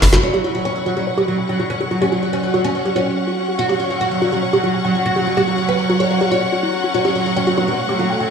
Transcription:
0.00 0.09 F#1 loud
0.00 0.22 F#3 medium
0.00 0.25 E4 medium
0.00 1.66 B5 medium
0.00 snare medium
0.00 open hi-hat loud
0.13 0.19 F#1 medium
0.13 0.19 F#4 loud
0.13 snare medium
0.13 closed hi-hat medium
0.23 8.30 F#3 medium
0.23 0.30 C#4 medium
0.23 8.30 C#4 medium
0.23 0.27 F#4 medium
0.23 6.97 F#4 medium
0.34 0.41 F#3 medium
0.34 0.40 G4 medium
0.41 0.51 F#3 medium
0.41 0.47 F#4 medium
0.41 8.30 C#6 medium
0.55 0.61 F#3 medium
0.65 0.72 C#4 medium
0.65 8.30 F#4 medium
0.65 8.30 F#5 medium
0.65 0.69 G5 medium
0.76 0.82 F#3 medium
0.86 0.93 F#3 medium
0.86 0.92 F#4 medium
0.97 1.03 F#3 medium
0.97 0.99 G4 medium
1.07 1.11 C#5 medium
1.18 1.24 F#3 medium
1.18 1.21 G4 loud
1.28 1.35 F#3 medium
1.28 1.32 F#4 medium
1.39 1.42 G5 medium
1.49 1.56 F#3 medium
1.49 1.53 G5 medium
1.60 1.66 F#3 medium
1.60 1.65 F#4 medium
1.70 1.77 C#4 medium
1.81 1.87 F#3 medium
1.81 1.83 G4 medium
1.91 1.98 F#3 medium
1.91 1.95 F#4 medium
2.01 2.08 C#4 medium
2.01 2.07 G4 medium
2.12 2.19 F#3 medium
2.12 2.14 F#4 medium
2.23 2.29 F#3 medium
2.33 2.40 C#4 medium
2.33 2.37 G5 medium
2.44 2.50 F#3 medium
2.54 2.61 F#3 medium
2.54 2.60 F#4 loud
2.64 2.71 C#4 loud
2.75 2.82 F#3 medium
2.75 2.79 C#5 medium
2.85 2.92 F#3 medium
2.85 2.89 G4 loud
2.96 3.50 C#4 medium
2.96 3.00 F#4 medium
3.06 3.10 G5 medium
3.17 3.21 G5 medium
3.27 3.33 F#4 medium
3.48 3.51 G4 medium
3.59 3.63 F#4 medium
3.59 3.66 F#4 medium
3.69 3.76 F#3 medium
3.69 3.75 G4 loud
3.80 3.87 F#3 medium
3.80 3.82 F#4 medium
3.90 3.97 F#3 medium
4.01 4.08 F#4 medium
4.01 4.05 G5 medium
4.11 4.18 F#3 medium
4.22 4.29 F#3 medium
4.22 4.28 F#4 medium
4.32 4.39 F#3 medium
4.32 4.35 G4 medium
4.43 4.47 C#5 medium
4.53 4.60 F#3 medium
4.53 4.57 G4 loud
4.64 4.71 F#3 medium
4.64 4.68 F#4 medium
4.74 4.78 G5 medium
4.85 4.92 F#3 medium
4.85 4.89 G5 medium
4.95 5.02 F#3 medium
4.95 5.01 F#4 medium
5.06 5.12 F#4 medium
5.16 5.23 F#3 medium
5.16 5.19 G4 medium
5.27 5.34 F#3 medium
5.27 5.31 F#4 medium
5.37 5.44 F#4 medium
5.37 5.43 G4 medium
5.48 5.54 F#3 medium
5.48 5.50 F#4 medium
5.58 5.65 F#3 medium
5.69 5.75 B4 medium
5.69 5.73 G5 medium
5.79 5.86 F#3 medium
5.90 5.96 F#3 medium
5.90 5.95 F#4 loud
6.00 6.02 G4 medium
6.00 6.07 C#5 medium
6.11 6.17 F#3 medium
6.11 6.14 C#5 medium
6.21 6.28 F#3 medium
6.21 6.25 G4 loud
6.32 6.35 F#4 loud
6.32 6.86 C#5 medium
6.53 6.55 F#4 medium
6.63 6.69 E4 medium
6.84 6.88 F#4 medium
6.94 8.30 A3 medium
6.94 7.01 C#4 medium
6.94 6.98 F#4 medium
7.05 7.12 F#3 medium
7.05 7.11 G4 medium
7.15 7.22 F#3 medium
7.15 7.18 F#4 medium
7.26 7.33 F#3 medium
7.36 7.43 C#4 medium
7.36 7.40 G5 medium
7.47 7.54 F#3 medium
7.47 7.51 F#4 loud
7.57 7.64 F#3 medium
7.57 7.64 B3 medium
7.57 7.63 F#4 loud
7.68 7.75 F#3 medium
7.68 7.75 B3 medium
7.68 7.70 G4 medium
7.78 7.82 C#5 medium
7.89 7.96 F#3 medium
7.89 7.93 G4 loud
7.99 8.06 F#3 medium
7.99 8.30 A3 loud
7.99 8.03 F#4 medium
8.10 8.14 G5 medium
8.20 8.27 F#3 medium
8.20 8.24 G5 medium

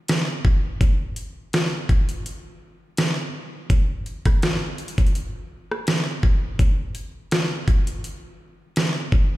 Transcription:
0.08 snare loud
0.08 closed hi-hat medium
0.45 kick loud
0.81 kick loud
0.81 closed hi-hat medium
1.16 closed hi-hat medium
1.53 snare loud
1.53 closed hi-hat medium
1.89 kick medium
1.89 closed hi-hat soft
2.09 closed hi-hat medium
2.26 closed hi-hat medium
2.97 snare loud
2.97 closed hi-hat medium
3.70 kick loud
3.70 closed hi-hat medium
4.06 closed hi-hat soft
4.25 kick loud
4.25 cross-stick medium
4.25 closed hi-hat medium
4.42 snare loud
4.42 closed hi-hat medium
4.78 closed hi-hat medium
4.88 closed hi-hat medium
4.98 kick medium
4.98 closed hi-hat medium
5.07 closed hi-hat medium
5.15 closed hi-hat medium
5.72 cross-stick medium
5.87 snare loud
5.87 closed hi-hat medium
6.23 kick medium
6.59 kick loud
6.59 closed hi-hat medium
6.95 closed hi-hat medium
7.31 snare loud
7.31 closed hi-hat medium
7.68 kick medium
7.68 closed hi-hat soft
7.87 closed hi-hat medium
8.04 closed hi-hat medium
8.76 snare loud
8.76 closed hi-hat medium
9.12 kick loud

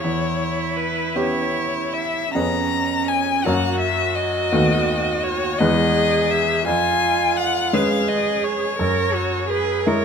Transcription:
0.00 2.33 E4 medium
0.00 0.78 C#5 medium
0.04 1.12 E2 soft
0.76 1.17 B4 medium
1.16 2.30 B3 soft
1.16 2.31 C#4 soft
1.16 2.31 G4 soft
1.16 1.95 C#5 medium
1.93 2.33 E5 medium
2.33 3.42 F2 soft
2.33 3.42 B3 soft
2.33 3.46 C#4 medium
2.33 3.42 C#4 soft
2.33 3.42 G#4 soft
2.33 3.09 A#5 medium
3.08 3.45 G#5 medium
3.44 4.51 F#2 medium
3.44 4.50 A#3 soft
3.44 4.50 C#4 soft
3.44 5.62 F#4 medium
3.44 4.50 F#4 soft
3.44 3.79 F#5 medium
3.79 4.17 E5 medium
4.15 5.24 D#5 medium
4.52 5.56 D#2 medium
4.52 5.56 A3 soft
4.52 5.56 B3 soft
4.52 5.56 F#4 soft
5.23 5.60 C#5 medium
5.59 6.63 E2 medium
5.59 6.63 G#3 soft
5.59 6.63 B3 soft
5.59 6.66 G#4 medium
5.59 6.63 B4 soft
5.59 6.32 D#5 medium
6.30 6.66 E5 medium
6.66 7.70 F2 soft
6.66 7.75 F4 medium
6.66 7.38 G#5 medium
7.36 7.75 F#5 medium
7.73 8.74 G#3 soft
7.73 8.74 C#4 soft
7.73 8.78 G#4 medium
7.73 8.75 B4 soft
7.73 8.10 F5 medium
8.08 8.46 D#5 medium
8.44 9.51 C#5 medium
8.79 9.84 F#2 medium
8.79 9.15 A#4 medium
9.14 9.49 F#4 medium
9.49 9.89 G#4 medium
9.49 9.88 B4 medium
9.86 10.05 G#3 soft
9.86 10.05 E4 soft
9.86 10.05 A#4 soft
9.86 10.05 A#4 medium
9.86 10.05 C#5 medium

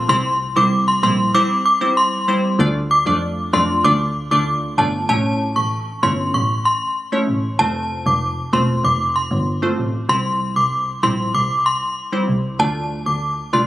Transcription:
0.09 0.48 C2 loud
0.09 0.26 G3 medium
0.09 0.26 C4 medium
0.09 0.26 E4 medium
0.09 0.26 C5 loud
0.09 0.30 C6 loud
0.56 0.95 C2 loud
0.56 0.99 G3 medium
0.56 0.99 C4 medium
0.56 0.99 E4 medium
0.56 1.00 C5 medium
0.56 0.67 D6 medium
0.88 0.98 C6 medium
1.03 1.29 A#1 loud
1.03 1.32 G3 medium
1.03 1.32 C4 medium
1.03 1.32 E4 medium
1.03 1.32 C5 medium
1.03 1.13 C6 medium
1.34 1.51 G3 loud
1.34 1.51 C4 medium
1.34 1.52 E4 medium
1.34 1.52 C5 loud
1.34 1.45 D6 medium
1.66 1.76 D6 medium
1.81 2.24 G3 medium
1.81 2.24 C4 medium
1.81 2.24 E4 medium
1.81 2.25 C5 medium
1.97 2.41 C6 medium
2.28 2.57 G3 medium
2.28 2.57 C4 medium
2.28 2.57 E4 medium
2.28 2.57 C5 medium
2.59 2.98 D2 loud
2.59 2.76 A3 medium
2.59 2.76 D4 medium
2.59 2.77 F4 medium
2.59 2.77 D5 loud
2.91 3.01 D6 medium
3.06 3.45 F2 medium
3.06 3.49 A3 medium
3.06 3.49 D4 medium
3.06 3.50 F4 medium
3.06 3.50 D5 medium
3.53 3.79 F2 medium
3.53 3.82 A3 medium
3.53 3.82 D4 medium
3.53 3.82 F4 medium
3.53 3.82 D5 medium
3.53 3.64 C6 medium
3.84 4.23 D2 loud
3.84 4.01 A3 loud
3.84 4.01 D4 medium
3.84 4.02 F4 medium
3.84 4.02 D5 loud
3.84 3.95 D6 medium
4.31 4.44 D2 medium
4.31 4.74 A3 medium
4.31 4.75 D4 medium
4.31 4.75 F4 medium
4.31 4.75 D5 medium
4.31 4.42 D6 medium
4.78 5.04 G1 medium
4.78 5.07 A3 medium
4.78 5.07 D4 medium
4.78 5.07 F4 medium
4.78 5.07 D5 medium
4.78 4.88 A5 medium
5.09 5.48 A1 loud
5.09 5.96 A3 medium
5.09 5.96 C#4 medium
5.09 5.96 E4 medium
5.09 5.96 C#5 loud
5.09 5.19 A5 loud
5.56 5.82 A1 medium
5.56 5.66 C#6 medium
6.03 6.16 G1 medium
6.03 6.32 A3 medium
6.03 6.32 C#4 medium
6.03 6.32 E4 medium
6.03 6.32 C#5 medium
6.03 6.13 C6 medium
6.34 6.60 A1 loud
6.34 6.44 C#6 medium
6.65 6.76 C6 medium
7.12 7.29 A3 medium
7.12 7.29 C#4 medium
7.12 7.29 E4 medium
7.12 7.30 C#5 medium
7.28 7.54 A1 medium
7.59 7.98 F1 loud
7.59 8.46 A3 medium
7.59 8.46 C4 medium
7.59 8.46 F4 medium
7.59 8.46 C5 medium
7.59 7.69 A5 loud
8.06 8.32 F1 loud
8.06 8.17 D6 medium
8.53 8.66 E1 loud
8.53 8.82 A3 medium
8.53 8.82 C4 medium
8.53 8.82 F4 medium
8.53 8.82 C5 medium
8.53 8.63 C6 medium
8.84 9.23 F1 loud
8.84 8.95 D6 medium
9.16 9.26 C6 medium
9.31 9.57 G1 loud
9.62 9.79 A3 medium
9.62 9.80 C4 medium
9.62 9.80 F4 medium
9.62 9.80 C5 medium
9.78 9.91 A1 medium
10.09 10.48 C2 loud
10.09 10.96 G3 medium
10.09 10.96 C4 medium
10.09 10.96 E4 medium
10.09 10.96 C5 loud
10.09 10.20 C6 loud
10.56 10.82 C2 loud
10.56 10.66 D6 medium
11.03 11.16 A#1 medium
11.03 11.32 G3 medium
11.03 11.32 C4 medium
11.03 11.32 E4 medium
11.03 11.32 C5 medium
11.03 11.13 C6 medium
11.34 11.60 C2 loud
11.34 11.45 D6 medium
11.66 11.76 C6 medium
12.12 12.29 G3 medium
12.12 12.29 C4 medium
12.12 12.30 E4 medium
12.12 12.30 C5 medium
12.28 12.54 C2 loud
12.59 12.98 D2 loud
12.59 13.46 A3 medium
12.59 13.46 D4 medium
12.59 13.46 F4 medium
12.59 13.46 D5 loud
12.59 12.70 A5 loud
13.06 13.32 D2 medium
13.06 13.17 D6 medium
13.53 13.66 C2 medium
13.53 13.67 A3 medium
13.53 13.67 D4 medium
13.53 13.67 F4 medium
13.53 13.67 D5 medium
13.53 13.63 C6 medium

